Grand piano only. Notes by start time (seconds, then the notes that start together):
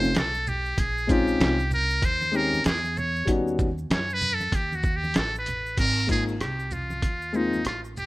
1.07 G#3 C4 C#4 D#4 F4
2.32 G#3 C4 C#4 D#4 G4
3.25 G3 B3 C#4 D#4 F#4
6.07 G#3 A#3 C4 D#4 F4
7.33 G#3 A#3 C4 D#4 F4